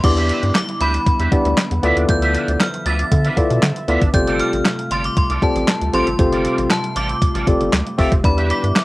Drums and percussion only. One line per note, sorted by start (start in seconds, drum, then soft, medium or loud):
0.04 kick loud
0.04 closed hi-hat medium
0.04 crash medium
0.17 closed hi-hat soft
0.29 closed hi-hat medium
0.43 closed hi-hat soft
0.55 snare loud
0.55 clap medium
0.55 closed hi-hat medium
0.69 closed hi-hat medium
0.81 closed hi-hat medium
0.94 closed hi-hat medium
1.07 kick loud
1.07 closed hi-hat medium
1.20 closed hi-hat medium
1.32 kick medium
1.32 closed hi-hat medium
1.45 closed hi-hat soft
1.57 snare loud
1.57 clap medium
1.57 closed hi-hat loud
1.71 closed hi-hat medium
1.83 closed hi-hat medium
1.97 closed hi-hat medium
2.09 kick loud
2.09 closed hi-hat medium
2.22 closed hi-hat medium
2.35 closed hi-hat medium
2.48 closed hi-hat soft
2.60 snare loud
2.60 clap medium
2.60 closed hi-hat medium
2.74 closed hi-hat medium
2.86 closed hi-hat medium
2.99 closed hi-hat medium
3.12 kick loud
3.12 closed hi-hat medium
3.25 closed hi-hat medium
3.37 kick medium
3.37 closed hi-hat medium
3.50 closed hi-hat medium
3.62 snare loud
3.62 clap medium
3.62 closed hi-hat medium
3.76 closed hi-hat medium
3.88 closed hi-hat medium
4.02 kick loud
4.02 closed hi-hat medium
4.14 kick loud
4.14 closed hi-hat medium
4.28 closed hi-hat medium
4.40 closed hi-hat medium
4.53 closed hi-hat soft
4.65 snare loud
4.65 clap medium
4.65 closed hi-hat medium
4.79 closed hi-hat medium
4.91 closed hi-hat medium
5.04 closed hi-hat medium
5.17 kick loud
5.17 closed hi-hat medium
5.30 closed hi-hat medium
5.42 kick medium
5.42 closed hi-hat medium
5.56 closed hi-hat medium
5.68 snare loud
5.68 clap medium
5.68 closed hi-hat loud
5.82 closed hi-hat medium
5.94 closed hi-hat medium
6.07 closed hi-hat medium
6.19 kick loud
6.19 closed hi-hat medium
6.33 closed hi-hat soft
6.45 closed hi-hat medium
6.58 closed hi-hat soft
6.70 snare loud
6.70 clap medium
6.70 closed hi-hat medium
6.84 closed hi-hat medium
6.96 closed hi-hat medium
7.09 closed hi-hat medium
7.22 kick loud
7.22 closed hi-hat medium
7.35 closed hi-hat medium
7.47 kick medium
7.47 closed hi-hat medium
7.61 closed hi-hat medium
7.73 snare loud
7.73 clap medium
7.73 closed hi-hat loud
7.87 closed hi-hat medium
7.99 kick medium
7.99 open hi-hat medium
8.12 kick loud
8.12 closed hi-hat medium
8.24 kick loud
8.24 closed hi-hat medium
8.38 closed hi-hat soft
8.50 closed hi-hat medium
8.64 closed hi-hat soft
8.76 snare loud
8.76 clap medium
8.76 closed hi-hat medium